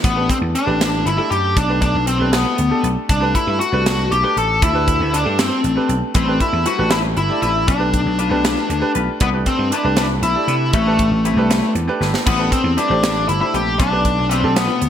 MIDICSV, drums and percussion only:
0, 0, Header, 1, 2, 480
1, 0, Start_track
1, 0, Key_signature, 0, "minor"
1, 0, Tempo, 509771
1, 37, Time_signature, 6, 3, 24, 8
1, 14021, End_track
2, 0, Start_track
2, 0, Title_t, "Drums"
2, 38, Note_on_c, 9, 36, 94
2, 42, Note_on_c, 9, 42, 76
2, 132, Note_off_c, 9, 36, 0
2, 136, Note_off_c, 9, 42, 0
2, 278, Note_on_c, 9, 36, 68
2, 284, Note_on_c, 9, 42, 57
2, 372, Note_off_c, 9, 36, 0
2, 378, Note_off_c, 9, 42, 0
2, 521, Note_on_c, 9, 42, 61
2, 615, Note_off_c, 9, 42, 0
2, 763, Note_on_c, 9, 42, 78
2, 765, Note_on_c, 9, 38, 100
2, 857, Note_off_c, 9, 42, 0
2, 859, Note_off_c, 9, 38, 0
2, 1004, Note_on_c, 9, 42, 50
2, 1098, Note_off_c, 9, 42, 0
2, 1240, Note_on_c, 9, 42, 50
2, 1335, Note_off_c, 9, 42, 0
2, 1475, Note_on_c, 9, 36, 95
2, 1477, Note_on_c, 9, 42, 75
2, 1569, Note_off_c, 9, 36, 0
2, 1571, Note_off_c, 9, 42, 0
2, 1710, Note_on_c, 9, 42, 50
2, 1713, Note_on_c, 9, 36, 67
2, 1804, Note_off_c, 9, 42, 0
2, 1807, Note_off_c, 9, 36, 0
2, 1951, Note_on_c, 9, 42, 58
2, 2045, Note_off_c, 9, 42, 0
2, 2192, Note_on_c, 9, 42, 69
2, 2194, Note_on_c, 9, 38, 103
2, 2286, Note_off_c, 9, 42, 0
2, 2288, Note_off_c, 9, 38, 0
2, 2430, Note_on_c, 9, 42, 50
2, 2525, Note_off_c, 9, 42, 0
2, 2674, Note_on_c, 9, 42, 47
2, 2768, Note_off_c, 9, 42, 0
2, 2913, Note_on_c, 9, 36, 90
2, 2916, Note_on_c, 9, 42, 71
2, 3007, Note_off_c, 9, 36, 0
2, 3010, Note_off_c, 9, 42, 0
2, 3154, Note_on_c, 9, 36, 65
2, 3157, Note_on_c, 9, 42, 48
2, 3248, Note_off_c, 9, 36, 0
2, 3251, Note_off_c, 9, 42, 0
2, 3402, Note_on_c, 9, 42, 60
2, 3496, Note_off_c, 9, 42, 0
2, 3637, Note_on_c, 9, 42, 77
2, 3638, Note_on_c, 9, 38, 98
2, 3731, Note_off_c, 9, 42, 0
2, 3733, Note_off_c, 9, 38, 0
2, 3878, Note_on_c, 9, 42, 49
2, 3972, Note_off_c, 9, 42, 0
2, 4117, Note_on_c, 9, 42, 51
2, 4211, Note_off_c, 9, 42, 0
2, 4353, Note_on_c, 9, 36, 98
2, 4353, Note_on_c, 9, 42, 77
2, 4447, Note_off_c, 9, 36, 0
2, 4447, Note_off_c, 9, 42, 0
2, 4593, Note_on_c, 9, 36, 68
2, 4593, Note_on_c, 9, 42, 56
2, 4687, Note_off_c, 9, 36, 0
2, 4688, Note_off_c, 9, 42, 0
2, 4840, Note_on_c, 9, 42, 61
2, 4934, Note_off_c, 9, 42, 0
2, 5073, Note_on_c, 9, 42, 82
2, 5075, Note_on_c, 9, 38, 96
2, 5167, Note_off_c, 9, 42, 0
2, 5169, Note_off_c, 9, 38, 0
2, 5313, Note_on_c, 9, 42, 52
2, 5407, Note_off_c, 9, 42, 0
2, 5551, Note_on_c, 9, 42, 51
2, 5645, Note_off_c, 9, 42, 0
2, 5786, Note_on_c, 9, 42, 72
2, 5791, Note_on_c, 9, 36, 91
2, 5880, Note_off_c, 9, 42, 0
2, 5885, Note_off_c, 9, 36, 0
2, 6030, Note_on_c, 9, 42, 49
2, 6031, Note_on_c, 9, 36, 64
2, 6124, Note_off_c, 9, 42, 0
2, 6125, Note_off_c, 9, 36, 0
2, 6268, Note_on_c, 9, 42, 59
2, 6362, Note_off_c, 9, 42, 0
2, 6501, Note_on_c, 9, 42, 73
2, 6503, Note_on_c, 9, 38, 101
2, 6595, Note_off_c, 9, 42, 0
2, 6597, Note_off_c, 9, 38, 0
2, 6748, Note_on_c, 9, 42, 50
2, 6842, Note_off_c, 9, 42, 0
2, 6992, Note_on_c, 9, 42, 50
2, 7086, Note_off_c, 9, 42, 0
2, 7230, Note_on_c, 9, 42, 64
2, 7233, Note_on_c, 9, 36, 93
2, 7325, Note_off_c, 9, 42, 0
2, 7327, Note_off_c, 9, 36, 0
2, 7473, Note_on_c, 9, 36, 67
2, 7473, Note_on_c, 9, 42, 50
2, 7567, Note_off_c, 9, 36, 0
2, 7567, Note_off_c, 9, 42, 0
2, 7711, Note_on_c, 9, 42, 56
2, 7805, Note_off_c, 9, 42, 0
2, 7953, Note_on_c, 9, 42, 85
2, 7955, Note_on_c, 9, 38, 112
2, 8047, Note_off_c, 9, 42, 0
2, 8049, Note_off_c, 9, 38, 0
2, 8193, Note_on_c, 9, 42, 56
2, 8287, Note_off_c, 9, 42, 0
2, 8427, Note_on_c, 9, 42, 55
2, 8522, Note_off_c, 9, 42, 0
2, 8666, Note_on_c, 9, 42, 78
2, 8671, Note_on_c, 9, 36, 104
2, 8760, Note_off_c, 9, 42, 0
2, 8765, Note_off_c, 9, 36, 0
2, 8908, Note_on_c, 9, 42, 56
2, 8911, Note_on_c, 9, 36, 66
2, 9002, Note_off_c, 9, 42, 0
2, 9005, Note_off_c, 9, 36, 0
2, 9152, Note_on_c, 9, 42, 68
2, 9246, Note_off_c, 9, 42, 0
2, 9384, Note_on_c, 9, 42, 84
2, 9386, Note_on_c, 9, 38, 111
2, 9478, Note_off_c, 9, 42, 0
2, 9480, Note_off_c, 9, 38, 0
2, 9630, Note_on_c, 9, 42, 56
2, 9725, Note_off_c, 9, 42, 0
2, 9871, Note_on_c, 9, 42, 51
2, 9966, Note_off_c, 9, 42, 0
2, 10104, Note_on_c, 9, 42, 74
2, 10108, Note_on_c, 9, 36, 97
2, 10199, Note_off_c, 9, 42, 0
2, 10203, Note_off_c, 9, 36, 0
2, 10347, Note_on_c, 9, 42, 52
2, 10350, Note_on_c, 9, 36, 71
2, 10441, Note_off_c, 9, 42, 0
2, 10444, Note_off_c, 9, 36, 0
2, 10595, Note_on_c, 9, 42, 59
2, 10689, Note_off_c, 9, 42, 0
2, 10834, Note_on_c, 9, 42, 77
2, 10835, Note_on_c, 9, 38, 107
2, 10928, Note_off_c, 9, 42, 0
2, 10930, Note_off_c, 9, 38, 0
2, 11069, Note_on_c, 9, 42, 51
2, 11163, Note_off_c, 9, 42, 0
2, 11313, Note_on_c, 9, 38, 51
2, 11407, Note_off_c, 9, 38, 0
2, 11430, Note_on_c, 9, 38, 78
2, 11525, Note_off_c, 9, 38, 0
2, 11550, Note_on_c, 9, 36, 96
2, 11551, Note_on_c, 9, 49, 88
2, 11644, Note_off_c, 9, 36, 0
2, 11646, Note_off_c, 9, 49, 0
2, 11789, Note_on_c, 9, 36, 71
2, 11792, Note_on_c, 9, 42, 59
2, 11883, Note_off_c, 9, 36, 0
2, 11886, Note_off_c, 9, 42, 0
2, 12032, Note_on_c, 9, 42, 63
2, 12126, Note_off_c, 9, 42, 0
2, 12273, Note_on_c, 9, 42, 87
2, 12275, Note_on_c, 9, 38, 112
2, 12367, Note_off_c, 9, 42, 0
2, 12369, Note_off_c, 9, 38, 0
2, 12513, Note_on_c, 9, 42, 60
2, 12607, Note_off_c, 9, 42, 0
2, 12753, Note_on_c, 9, 42, 53
2, 12847, Note_off_c, 9, 42, 0
2, 12990, Note_on_c, 9, 36, 98
2, 12992, Note_on_c, 9, 42, 75
2, 13084, Note_off_c, 9, 36, 0
2, 13086, Note_off_c, 9, 42, 0
2, 13228, Note_on_c, 9, 42, 57
2, 13230, Note_on_c, 9, 36, 65
2, 13323, Note_off_c, 9, 42, 0
2, 13324, Note_off_c, 9, 36, 0
2, 13474, Note_on_c, 9, 42, 64
2, 13568, Note_off_c, 9, 42, 0
2, 13713, Note_on_c, 9, 42, 85
2, 13715, Note_on_c, 9, 38, 105
2, 13807, Note_off_c, 9, 42, 0
2, 13809, Note_off_c, 9, 38, 0
2, 13951, Note_on_c, 9, 42, 56
2, 14021, Note_off_c, 9, 42, 0
2, 14021, End_track
0, 0, End_of_file